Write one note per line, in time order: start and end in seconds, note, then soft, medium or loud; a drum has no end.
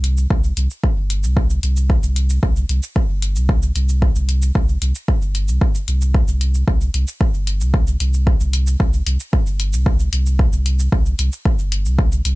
0.00 0.27 C2 loud
0.00 closed hi-hat medium
0.17 cabasa soft
0.30 0.52 C2 loud
0.30 kick loud
0.44 cabasa soft
0.57 0.68 C2 loud
0.57 closed hi-hat medium
0.70 cabasa soft
0.84 kick loud
0.97 1.25 G1 loud
1.10 closed hi-hat medium
1.24 1.59 C2 loud
1.24 cabasa soft
1.37 kick loud
1.50 cabasa soft
1.63 1.99 C2 loud
1.63 closed hi-hat medium
1.77 cabasa soft
1.90 kick loud
2.03 2.39 C2 loud
2.03 cabasa soft
2.16 closed hi-hat medium
2.30 cabasa soft
2.43 2.65 C2 loud
2.43 kick loud
2.56 cabasa soft
2.69 2.80 C2 loud
2.69 closed hi-hat medium
2.83 cabasa soft
2.96 kick loud
3.09 3.37 G1 loud
3.22 closed hi-hat medium
3.36 3.72 C2 loud
3.36 cabasa soft
3.49 kick loud
3.62 cabasa soft
3.76 4.12 C2 loud
3.76 closed hi-hat medium
3.89 cabasa medium
4.02 kick loud
4.16 4.52 C2 loud
4.16 cabasa soft
4.29 closed hi-hat medium
4.42 cabasa soft
4.55 4.77 C2 loud
4.55 kick loud
4.69 cabasa soft
4.82 4.93 C2 loud
4.82 closed hi-hat medium
4.95 cabasa soft
5.08 kick loud
5.22 5.50 G1 loud
5.22 cabasa soft
5.35 closed hi-hat medium
5.48 5.59 C2 loud
5.48 cabasa soft
5.61 kick loud
5.75 cabasa soft
5.88 6.24 C2 loud
5.88 closed hi-hat medium
6.01 cabasa soft
6.14 kick loud
6.28 6.64 C2 loud
6.28 cabasa soft
6.41 closed hi-hat medium
6.54 cabasa medium
6.68 6.90 C2 loud
6.68 kick loud
6.81 cabasa soft
6.94 7.05 C2 loud
6.94 closed hi-hat medium
7.08 cabasa medium
7.21 kick loud
7.34 7.62 G1 loud
7.34 cabasa soft
7.47 closed hi-hat medium
7.61 7.97 C2 loud
7.61 cabasa medium
7.74 kick loud
7.87 cabasa soft
8.00 8.37 C2 loud
8.00 closed hi-hat medium
8.14 cabasa medium
8.27 kick loud
8.40 8.76 C2 loud
8.40 cabasa soft
8.53 closed hi-hat medium
8.67 cabasa medium
8.80 9.02 C2 loud
8.80 kick loud
8.93 cabasa soft
9.07 9.18 C2 loud
9.07 closed hi-hat medium
9.20 cabasa medium
9.33 kick loud
9.47 9.75 G1 loud
9.47 cabasa soft
9.60 closed hi-hat medium
9.73 10.09 C2 loud
9.73 cabasa medium
9.86 kick loud
10.00 cabasa soft
10.13 10.49 C2 loud
10.13 closed hi-hat medium
10.26 cabasa medium
10.39 kick loud
10.53 10.89 C2 loud
10.53 cabasa soft
10.66 closed hi-hat medium
10.79 cabasa soft
10.92 11.14 C2 loud
10.92 kick loud
11.06 cabasa soft
11.19 11.30 C2 loud
11.19 closed hi-hat medium
11.32 cabasa medium
11.45 kick loud
11.59 11.87 G1 loud
11.59 cabasa soft
11.72 closed hi-hat medium
11.85 12.21 C2 loud
11.85 cabasa soft
11.99 kick loud
12.12 cabasa soft
12.25 12.35 C2 loud
12.25 closed hi-hat medium